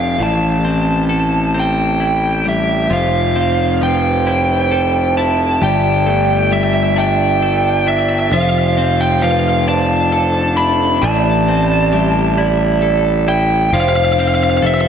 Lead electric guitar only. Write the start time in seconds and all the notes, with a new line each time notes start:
Already playing: F5
0.23 A5
1.59 G5
2.49 E5
2.93 F5
3.83 G5
5.17 A5
5.63 G5
6.53 E5
6.98 G5
7.88 E5
8.33 F5
9.00 G5
9.22 F5
9.68 A5
10.57 B5
11.02 A5
13.28 G5
13.73 F5
13.80 F5
13.89 F5
13.96 F5
14.05 F5
14.13 F5
14.20 F5
14.28 F5
14.35 F5
14.43 F5
14.50 F5
14.57 F5
14.66 E5
14.74 E5
14.81 E5